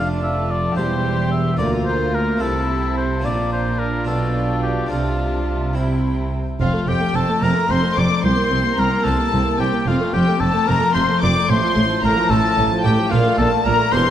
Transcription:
Already playing: double bass section F1, cello section F2, harpsichord F2 A3 D4 F4, viola section D4, violin section F4 A5
0.23 oboe E5
0.51 oboe D5
0.75 double bass section E1, cello section E2, harpsichord E2 C4 G4, viola section G3, violin section G4, oboe C5
0.79 violin section C6
1.31 oboe E5
1.57 cello section D2, double bass section D2, harpsichord D2 F4 A#4, viola section A#3, violin section F4, oboe D5
1.61 violin section A#5
1.86 oboe C5
2.15 oboe A#4
2.37 harpsichord A3 E4 A4, violin section E4
2.42 double bass section C2, cello section C3, harpsichord C3, viola section C4, oboe A4, violin section A5
2.98 oboe C5
3.20 harpsichord A#3 D4 F4
3.24 double bass section A#1, harpsichord A#2, cello section A#2, viola section D4, violin section F4 A#5, oboe D5
3.53 oboe C5
3.79 oboe A#4
4.05 double bass section B1, cello section B2, harpsichord B2 D4 F4, oboe A4
4.10 violin section G5
4.63 oboe G4
4.86 harpsichord A3 C4 F4
4.91 double bass section C2, harpsichord C3, cello section C3, oboe F4, violin section A5
5.73 harpsichord C4 E4, viola section C4, violin section E4 G5
6.60 double bass section F1, cello section F2, harpsichord F2, viola section C4, oboe F4, violin section F5
6.74 viola section A3
6.87 double bass section F1, cello section F2, harpsichord F2, viola section C4, oboe G4, violin section G5
7.01 viola section A3
7.14 double bass section F1, harpsichord F2, cello section F2, viola section C4, oboe A4, violin section A5
7.28 viola section A3
7.42 double bass section F1, cello section F2, harpsichord F2 A3 C4 F4, viola section C4, oboe A#4, violin section A#5
7.55 viola section A3
7.69 double bass section F1, cello section F2, harpsichord F2, viola section C4, oboe C5, violin section C6
7.83 viola section A3
7.96 double bass section F1, cello section F2, harpsichord F2, viola section C4, oboe D5, violin section D6
8.10 viola section A3
8.23 harpsichord C2, cello section C2, double bass section C2, viola section C4, oboe C5, violin section C6
8.37 viola section A#3
8.50 cello section C2, harpsichord C2, double bass section C2, viola section C4
8.63 viola section A#3
8.76 harpsichord C2, cello section C2, double bass section C2, viola section C4, oboe A#4, violin section A#5
8.91 viola section A#3
9.04 harpsichord C2 A#3 C4 E4, cello section C2, double bass section C2, viola section C4, oboe A4, violin section A5
9.18 viola section A#3
9.33 double bass section C2, cello section C2, harpsichord C2, viola section C4
9.45 viola section A#3
9.58 cello section C2, double bass section C2, harpsichord C2, viola section C4, oboe G4, violin section G5
9.72 viola section A#3
9.86 double bass section F1, cello section F2, harpsichord F2, viola section C4, oboe F4, violin section F5
9.99 viola section A3
10.13 double bass section F1, cello section F2, harpsichord F2, viola section C4, oboe G4, violin section G5
10.27 viola section A3
10.40 double bass section F1, cello section F2, harpsichord F2, viola section C4, oboe A4, violin section A5
10.53 viola section A3
10.68 double bass section F1, harpsichord F2 A3 C4 F4, cello section F2, viola section C4, oboe A#4, violin section A#5
10.80 viola section A3
10.94 double bass section F1, harpsichord F2, cello section F2, viola section C4, oboe C5, violin section C6
11.08 viola section A3
11.21 double bass section F1, harpsichord F2, cello section F2, viola section C4, oboe D5, violin section D6
11.34 viola section A3
11.48 double bass section A1, harpsichord A2, cello section A2, viola section A3, oboe C5, violin section C6
11.62 viola section F3
11.75 double bass section A1, cello section A2, harpsichord A2, viola section A3
11.89 viola section F3
12.02 double bass section A1, harpsichord A2, cello section A2, viola section A3, oboe A#4, violin section A#5
12.16 viola section F3
12.30 double bass section A1, cello section A2, harpsichord A2 A3 C4 F4, viola section A3, oboe A4, violin section A5
12.43 viola section F3
12.57 double bass section A1, harpsichord A2, cello section A2, viola section A3
12.71 viola section F3
12.84 double bass section A1, cello section A2, harpsichord A2, viola section A3, oboe G4, violin section G5
12.97 viola section F3
13.11 double bass section A#1, harpsichord A#2 A3 D4 F4, cello section A#2, viola section A#3, oboe F4, violin section F5
13.25 viola section A3
13.37 double bass section A#1, harpsichord A#2, cello section A#2, viola section A#3, oboe A4, violin section A5
13.52 viola section A3
13.65 double bass section A#1, harpsichord A#2, cello section A#2, viola section A#3, oboe A#4, violin section A#5
13.78 viola section A3
13.91 double bass section E1, harpsichord E2 A#3 E4 G4, cello section E2, viola section E3, oboe C5, violin section C6
14.06 viola section G3

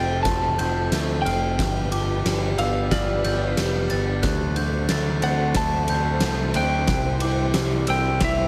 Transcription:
Already playing: picked electric bass F1, clean electric guitar F2 F3 A3 C4, string section F3 A3 C4 A4 C5, electric slide guitar G5, glockenspiel A6
0.23 picked electric bass F1, clean electric guitar F3, electric slide guitar A5, kick, snare, ride
0.58 picked electric bass F1, clean electric guitar C4, glockenspiel G6, ride
0.92 picked electric bass D2, clean electric guitar A3, snare, ride
1.22 picked electric bass F1, clean electric guitar C4, electric slide guitar G5, glockenspiel F6
1.26 ride
1.59 picked electric bass G1, clean electric guitar G2, string section B3 D4 G4 B4, kick, snare, ride
1.92 clean electric guitar F3, glockenspiel D6, ride
2.25 picked electric bass G1, clean electric guitar G3, snare, ride
2.58 picked electric bass G1, clean electric guitar B3, electric slide guitar F5, glockenspiel E6, ride
2.91 picked electric bass G1, clean electric guitar F3, electric slide guitar D5, glockenspiel F6, kick, snare, ride
3.24 picked electric bass G1, clean electric guitar B3, glockenspiel G6, ride
3.57 picked electric bass F1, clean electric guitar G3, snare, ride
3.90 picked electric bass G1, clean electric guitar B3, glockenspiel A6, ride
4.23 picked electric bass D2, clean electric guitar D3, string section F#3 C4 A4 C5, glockenspiel F#6, kick, snare, ride
4.56 clean electric guitar D3, glockenspiel G6, ride
4.89 picked electric bass D2, clean electric guitar A3, glockenspiel A6, snare, ride
5.22 picked electric bass D2, clean electric guitar C4, electric slide guitar F#5, glockenspiel A6, ride
5.55 picked electric bass D2, clean electric guitar D3, electric slide guitar A5, kick, snare, ride
5.88 picked electric bass D2, clean electric guitar C4, glockenspiel G6, ride
6.20 picked electric bass C2, clean electric guitar A3, snare, ride
6.54 picked electric bass D2, clean electric guitar C4, electric slide guitar G5, glockenspiel F#6, ride
6.87 picked electric bass C2, clean electric guitar C3, string section E3 G3 G4, kick, snare, ride
7.20 clean electric guitar E3, glockenspiel D6, ride
7.54 picked electric bass C2, clean electric guitar G3, snare, ride
7.87 picked electric bass C2, clean electric guitar C4, electric slide guitar G5, glockenspiel E6, ride
8.21 picked electric bass C2, clean electric guitar E3, electric slide guitar E5, glockenspiel F7, kick, snare, ride

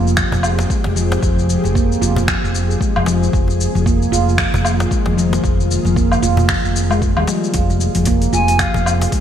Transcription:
Already playing: fretless electric bass F1, ambient pad F3 C4 G4 G#4
0.07 shaker
0.17 handpan F3, finger snap, kick, shaker
0.32 fretless electric bass F1, cajon bass, shaker
0.43 low woodblock, shaker
0.59 cajon slap, shaker
0.70 handpan G#3, kick, shaker
0.84 fretless electric bass F1, handpan F3, cajon slap
0.96 handpan F3, shaker
1.12 cajon slap, shaker
1.23 fretless electric bass F1, kick, shaker
1.39 shaker
1.49 shaker
1.64 fretless electric bass F1, handpan F3, cajon slap, shaker
1.75 handpan A#3, kick, shaker
1.92 shaker
2.01 fretless electric bass F1, handpan F4, shaker
2.16 cajon bass, shaker
2.28 handpan F3, finger snap, kick, shaker
2.44 fretless electric bass F1, shaker
2.55 shaker
2.71 shaker
2.81 handpan G#3, kick, shaker
2.96 fretless electric bass F1, handpan F3, low woodblock
3.06 handpan F3, cajon slap, shaker
3.23 shaker
3.32 fretless electric bass F1, ambient pad D#3 A#3 F4, kick, shaker
3.48 cajon slap, shaker
3.61 shaker
3.75 fretless electric bass F1, handpan F3, cajon slap, shaker
3.86 handpan A#3, kick, shaker
4.02 shaker
4.12 fretless electric bass F1, handpan F4, shaker
4.29 shaker
4.38 handpan F3, finger snap, kick, shaker
4.54 fretless electric bass F1, cajon bass, shaker
4.65 low woodblock, shaker
4.80 cajon slap, shaker
4.91 handpan G#3, kick, shaker
5.06 fretless electric bass F1, handpan F3, cajon slap
5.18 handpan F3, shaker
5.33 cajon slap, shaker
5.44 fretless electric bass F1, kick, shaker
5.60 shaker
5.71 shaker
5.85 fretless electric bass F1, handpan F3, cajon slap, shaker
5.96 handpan A#3, kick, shaker
6.12 low woodblock, shaker
6.22 fretless electric bass F1, handpan F4, shaker
6.37 cajon bass, shaker
6.49 handpan F3, finger snap, kick, shaker
6.64 fretless electric bass F1, shaker
6.76 shaker
6.90 handpan G#3, low woodblock, shaker
7.02 handpan G#3, kick, shaker
7.17 fretless electric bass D#2, handpan G3, low woodblock
7.27 handpan F3, cajon slap, shaker
7.44 shaker
7.54 fretless electric bass F1, ambient pad F3 C4 G4 G#4, handpan F4, kick, open hi-hat, shaker
7.70 cajon slap, shaker
7.81 shaker
7.95 fretless electric bass F1, handpan F3, cajon slap, open hi-hat, shaker
8.05 handpan A#3, kick, open hi-hat, shaker
8.22 open hi-hat, shaker
8.33 fretless electric bass F1, handpan F4, ney G#5, shaker
8.48 open hi-hat, shaker
8.59 handpan F3, ney F5, finger snap, kick, open hi-hat, shaker
8.74 fretless electric bass F1, cajon bass, shaker
8.86 low woodblock, shaker
9.01 cajon slap, open hi-hat, shaker
9.12 handpan G#3, kick, open hi-hat, shaker

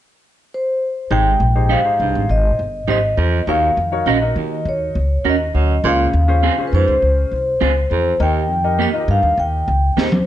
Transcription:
0.54 vibraphone C5
1.11 upright bass G#1, baritone saxophone G#2, grand piano G#2 D#4 G4 G#4 C5, vibraphone G5
1.40 upright bass A#1
1.55 grand piano D#4 G4 G#4 C5
1.69 clean electric guitar D#4 G4 C5, vibraphone F5
1.85 grand piano D#4 G4 G#4 C5
2.00 upright bass C2, baritone saxophone G2
2.15 upright bass G#1
2.29 upright bass G#1, vibraphone D#5
2.59 upright bass G1
2.88 upright bass G#1, clean electric guitar D#4 G4 C5, vibraphone D#5
3.17 upright bass E2, baritone saxophone F2
3.47 upright bass D#2, baritone saxophone D#2, grand piano D#3 D#4 F#4 A#4 C#5, vibraphone F5
3.77 upright bass F2
3.92 grand piano D#4 F#4 A#4 C#5
4.06 upright bass A#1, clean electric guitar C#4 F#4 A#4, vibraphone D#5
4.21 grand piano D#4 F#4 A#4 D#5
4.36 baritone saxophone D#2, upright bass D#3
4.65 upright bass D#2, vibraphone C#5
4.95 upright bass C#2
5.25 upright bass D#2, clean electric guitar C#4 F#4 A#4
5.29 vibraphone D#5
5.54 upright bass D2, baritone saxophone F#2
5.84 upright bass C#2, baritone saxophone A#2, grand piano C#3 C#4 F4 G#4 C5, vibraphone F5
6.13 upright bass D#2
6.28 grand piano C#4 F4 G#4 C5
6.43 clean electric guitar C4 F4 G#4
6.58 grand piano C#4 F4 G#4 C5
6.67 vibraphone B4
6.72 upright bass F2, baritone saxophone G#2, vibraphone C5
6.88 upright bass C#2
7.02 upright bass C#2
7.31 upright bass C2
7.61 upright bass C#2, clean electric guitar C4 F4 G#4, vibraphone C5
7.91 upright bass E2, baritone saxophone F2
8.20 upright bass D#2, baritone saxophone D#2, grand piano D#3 D#4 G4 A#4 D#5, vibraphone G5
8.50 upright bass F2
8.64 grand piano D#4 G4 A#4 D#5
8.79 clean electric guitar A#3 D#4 G4, vibraphone D#5
8.93 grand piano D#4 F4 A#4 D#5
9.00 grand piano G4
9.08 upright bass G2, baritone saxophone G2, vibraphone F5
9.23 upright bass D#2
9.38 upright bass D#2, vibraphone G5
9.68 upright bass C#2
9.97 upright bass D#2, clean electric guitar A#3 D#4 G4, vibraphone C5, snare
10.12 high tom

